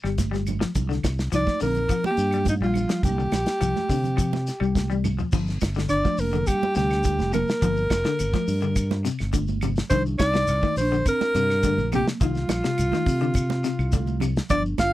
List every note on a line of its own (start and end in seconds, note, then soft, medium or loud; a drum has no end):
0.03 0.63 G1 medium
0.03 0.23 G3 medium
0.03 snare soft
0.03 claves medium
0.03 shekere soft
0.18 kick medium
0.18 snare soft
0.18 closed hi-hat medium
0.18 high conga medium
0.18 shekere medium
0.31 0.51 G3 medium
0.31 snare soft
0.31 high conga medium
0.31 shekere soft
0.47 closed hi-hat medium
0.47 high conga medium
0.47 low conga medium
0.47 claves medium
0.47 shekere medium
0.60 0.70 F3 medium
0.60 snare medium
0.60 shekere soft
0.75 0.99 C2 medium
0.75 kick loud
0.75 closed hi-hat medium
0.75 high conga soft
0.75 low conga medium
0.75 shekere loud
0.89 1.08 D3 medium
0.89 snare soft
0.89 shekere soft
1.03 1.28 C2 medium
1.03 kick medium
1.03 snare medium
1.03 closed hi-hat medium
1.03 high conga medium
1.03 claves medium
1.03 shekere medium
1.19 snare medium
1.19 shekere soft
1.32 1.45 C2 medium
1.32 1.51 F3 medium
1.32 1.59 D#4 medium
1.32 1.60 D5 loud
1.32 snare soft
1.32 closed hi-hat medium
1.32 high conga soft
1.32 claves medium
1.32 shekere loud
1.47 kick medium
1.47 snare soft
1.47 high conga medium
1.47 shekere soft
1.60 1.85 A#1 medium
1.60 1.80 D3 medium
1.60 2.01 A#4 loud
1.60 open hi-hat medium
1.60 shekere medium
1.64 2.03 C4 medium
1.75 closed hi-hat soft
1.75 low conga medium
1.75 shekere soft
1.89 2.09 F3 loud
1.89 kick medium
1.89 closed hi-hat medium
1.89 high conga soft
1.89 claves medium
1.89 shekere loud
2.04 2.45 G4 loud
2.04 high conga loud
2.04 shekere soft
2.11 2.47 A#3 medium
2.17 2.62 G2 medium
2.17 closed hi-hat medium
2.17 shekere medium
2.31 2.52 G3 medium
2.31 closed hi-hat soft
2.31 claves medium
2.31 shekere soft
2.45 2.54 D#4 medium
2.45 kick medium
2.45 closed hi-hat medium
2.45 high conga medium
2.45 shekere loud
2.50 2.56 G3 medium
2.61 2.85 A#1 medium
2.61 2.81 G3 medium
2.61 3.01 F4 medium
2.61 shekere soft
2.66 3.03 G3 medium
2.74 closed hi-hat medium
2.74 low conga medium
2.74 claves medium
2.74 shekere medium
2.89 2.99 F3 medium
2.89 snare medium
2.89 closed hi-hat medium
2.89 shekere soft
3.03 3.27 C2 loud
3.03 5.01 G4 medium
3.03 kick loud
3.03 closed hi-hat medium
3.03 high conga soft
3.03 low conga medium
3.03 shekere medium
3.09 5.03 A#3 medium
3.18 3.37 D3 medium
3.18 shekere soft
3.32 3.44 A#1 medium
3.32 snare medium
3.32 closed hi-hat medium
3.32 high conga loud
3.32 claves medium
3.32 shekere medium
3.46 snare medium
3.46 closed hi-hat medium
3.46 shekere soft
3.61 3.73 C2 medium
3.61 3.80 F3 medium
3.61 closed hi-hat medium
3.61 high conga soft
3.61 claves medium
3.61 shekere loud
3.76 snare soft
3.76 high conga medium
3.76 shekere soft
3.89 4.50 C3 medium
3.89 4.09 D3 medium
3.89 kick medium
3.89 open hi-hat medium
3.89 shekere medium
4.04 closed hi-hat soft
4.04 low conga medium
4.04 shekere soft
4.17 4.37 F3 loud
4.17 kick medium
4.17 closed hi-hat medium
4.17 high conga soft
4.17 claves medium
4.17 shekere loud
4.33 snare soft
4.33 high conga loud
4.33 shekere soft
4.47 snare soft
4.47 closed hi-hat medium
4.47 shekere medium
4.60 5.21 C2 loud
4.60 4.80 G3 medium
4.60 claves medium
4.60 shekere soft
4.75 kick medium
4.75 snare medium
4.75 high conga medium
4.75 shekere loud
4.90 5.09 G3 medium
4.90 high tom medium
4.90 shekere soft
5.04 mid tom medium
5.04 high conga medium
5.04 low conga medium
5.04 claves medium
5.04 shekere medium
5.19 5.28 F3 medium
5.19 floor tom medium
5.19 shekere soft
5.32 5.57 G1 loud
5.32 5.52 F3 medium
5.32 kick loud
5.32 crash loud
5.32 high conga soft
5.32 low conga medium
5.32 shekere loud
5.47 snare soft
5.47 shekere soft
5.61 5.86 G1 medium
5.61 kick medium
5.61 snare medium
5.61 closed hi-hat medium
5.61 high conga loud
5.61 claves medium
5.61 shekere medium
5.75 5.95 D3 medium
5.75 closed hi-hat soft
5.75 shekere soft
5.79 snare medium
5.89 6.02 G1 medium
5.89 6.16 D4 medium
5.89 6.21 D5 loud
5.89 closed hi-hat medium
5.89 high conga soft
5.89 claves medium
5.89 shekere medium
6.05 6.24 F3 medium
6.05 kick medium
6.05 high conga medium
6.05 shekere soft
6.18 6.42 F1 medium
6.18 6.48 A#3 medium
6.18 6.49 A#4 medium
6.18 open hi-hat medium
6.18 shekere medium
6.33 6.52 D3 medium
6.33 closed hi-hat soft
6.33 low conga medium
6.33 shekere soft
6.47 6.73 G3 medium
6.47 6.76 G4 loud
6.47 kick medium
6.47 closed hi-hat medium
6.47 high conga soft
6.47 claves medium
6.47 shekere loud
6.62 high conga medium
6.62 shekere soft
6.75 7.20 D2 medium
6.75 6.95 C3 medium
6.75 7.29 G3 medium
6.75 7.29 G4 loud
6.75 snare soft
6.75 closed hi-hat medium
6.75 shekere medium
6.90 snare soft
6.90 claves medium
6.90 shekere soft
7.03 kick medium
7.03 closed hi-hat medium
7.03 high conga medium
7.03 shekere medium
7.19 7.43 F1 medium
7.19 snare soft
7.19 high conga medium
7.19 shekere soft
7.33 7.53 C3 medium
7.33 9.01 A#3 medium
7.33 9.02 A#4 loud
7.33 closed hi-hat medium
7.33 low conga loud
7.33 claves medium
7.33 shekere medium
7.48 snare medium
7.48 shekere soft
7.62 7.86 G1 loud
7.62 7.81 F3 medium
7.62 kick loud
7.62 closed hi-hat medium
7.62 high conga soft
7.62 low conga medium
7.62 shekere medium
7.76 shekere soft
7.90 8.03 F1 loud
7.90 kick medium
7.90 snare medium
7.90 closed hi-hat soft
7.90 high conga loud
7.90 claves medium
7.90 shekere medium
8.04 8.24 D3 medium
8.04 snare medium
8.04 closed hi-hat soft
8.04 shekere soft
8.19 8.32 G1 medium
8.19 closed hi-hat medium
8.19 high conga soft
8.19 claves medium
8.19 shekere medium
8.33 8.53 F3 medium
8.33 kick medium
8.33 snare soft
8.33 closed hi-hat soft
8.33 high conga loud
8.33 shekere soft
8.48 9.08 G2 medium
8.48 open hi-hat medium
8.48 shekere medium
8.62 8.81 D3 medium
8.62 closed hi-hat soft
8.62 shekere soft
8.76 kick medium
8.76 closed hi-hat medium
8.76 high conga soft
8.76 claves medium
8.76 shekere loud
8.91 snare soft
8.91 high conga loud
8.91 shekere soft
9.05 9.24 C3 medium
9.05 snare soft
9.05 closed hi-hat medium
9.05 shekere medium
9.19 9.80 G1 medium
9.19 snare soft
9.19 claves medium
9.19 shekere soft
9.33 9.52 D3 medium
9.33 kick medium
9.33 closed hi-hat medium
9.33 high conga medium
9.33 shekere loud
9.47 high conga medium
9.47 shekere soft
9.61 9.82 C3 medium
9.61 closed hi-hat medium
9.61 high conga medium
9.61 low conga loud
9.61 claves medium
9.61 shekere medium
9.76 snare medium
9.76 closed hi-hat soft
9.76 shekere soft
9.90 10.15 C2 loud
9.90 10.10 D#3 medium
9.90 10.03 D4 medium
9.90 10.03 C5 loud
9.90 kick loud
9.90 closed hi-hat medium
9.90 high conga soft
9.90 low conga medium
9.90 shekere medium
10.06 shekere soft
10.19 10.44 C2 loud
10.19 10.72 D#4 medium
10.19 10.72 D5 loud
10.19 kick medium
10.19 snare medium
10.19 closed hi-hat medium
10.19 high conga loud
10.19 claves medium
10.19 shekere medium
10.33 10.53 C3 medium
10.33 snare medium
10.33 closed hi-hat soft
10.33 shekere soft
10.47 10.60 C2 medium
10.47 closed hi-hat medium
10.47 high conga soft
10.47 claves medium
10.47 shekere medium
10.62 10.82 D#3 medium
10.62 kick medium
10.62 high conga medium
10.62 shekere soft
10.76 11.01 A#1 medium
10.76 11.04 C5 loud
10.76 open hi-hat medium
10.76 shekere medium
10.81 11.06 D4 medium
10.91 11.11 D3 medium
10.91 closed hi-hat soft
10.91 shekere soft
11.06 11.88 C4 medium
11.06 11.89 A#4 loud
11.06 kick medium
11.06 closed hi-hat medium
11.06 high conga soft
11.06 claves medium
11.06 shekere loud
11.21 snare soft
11.21 high conga loud
11.21 shekere soft
11.34 11.80 G2 loud
11.34 11.55 C3 medium
11.34 closed hi-hat medium
11.34 shekere medium
11.50 snare soft
11.50 claves medium
11.50 shekere soft
11.63 11.83 D3 medium
11.63 kick medium
11.63 closed hi-hat medium
11.63 high conga medium
11.63 shekere loud
11.78 12.02 A#1 loud
11.78 high conga medium
11.78 shekere soft
11.92 12.12 C3 medium
11.92 12.07 A#3 medium
11.92 12.07 G4 loud
11.92 closed hi-hat medium
11.92 high conga medium
11.92 low conga loud
11.92 claves medium
11.92 shekere medium
12.07 snare medium
12.07 shekere soft
12.21 12.45 C2 loud
12.21 12.40 D#3 medium
12.21 14.18 G3 medium
12.21 14.18 F4 loud
12.21 kick loud
12.21 closed hi-hat medium
12.21 high conga soft
12.21 low conga medium
12.21 shekere medium
12.35 snare soft
12.35 shekere soft
12.49 12.61 A#1 medium
12.49 snare medium
12.49 closed hi-hat medium
12.49 high conga loud
12.49 claves medium
12.49 shekere medium
12.64 12.83 C3 medium
12.64 snare medium
12.64 closed hi-hat soft
12.64 shekere soft
12.78 12.91 C2 loud
12.78 closed hi-hat medium
12.78 high conga soft
12.78 claves medium
12.78 shekere loud
12.92 13.12 D#3 medium
12.92 snare soft
12.92 closed hi-hat soft
12.92 high conga medium
12.92 shekere soft
13.06 13.67 C3 medium
13.06 kick medium
13.06 open hi-hat medium
13.06 shekere medium
13.21 13.40 D3 medium
13.21 closed hi-hat soft
13.21 shekere soft
13.34 kick medium
13.34 closed hi-hat medium
13.34 high conga soft
13.34 claves medium
13.34 shekere loud
13.50 snare soft
13.50 high conga loud
13.50 shekere soft
13.64 13.83 C3 medium
13.64 snare soft
13.64 closed hi-hat medium
13.64 shekere medium
13.79 14.39 C2 loud
13.79 claves medium
13.79 shekere soft
13.92 14.12 D3 medium
13.92 kick medium
13.92 closed hi-hat medium
13.92 high conga medium
13.92 shekere loud
14.07 high conga medium
14.07 shekere soft
14.20 14.40 C3 medium
14.20 closed hi-hat medium
14.20 high conga medium
14.20 low conga loud
14.20 claves medium
14.20 shekere medium
14.36 snare medium
14.36 closed hi-hat soft
14.36 shekere soft
14.50 14.74 G1 medium
14.50 14.69 F3 medium
14.50 14.64 D4 medium
14.50 14.63 D5 loud
14.50 kick loud
14.50 closed hi-hat medium
14.50 high conga soft
14.50 low conga medium
14.50 shekere medium
14.66 shekere soft
14.78 14.93 G1 loud
14.78 14.93 F5 loud
14.78 kick medium
14.78 snare medium
14.78 closed hi-hat medium
14.78 high conga loud
14.78 claves medium
14.78 shekere medium
14.82 14.93 F4 medium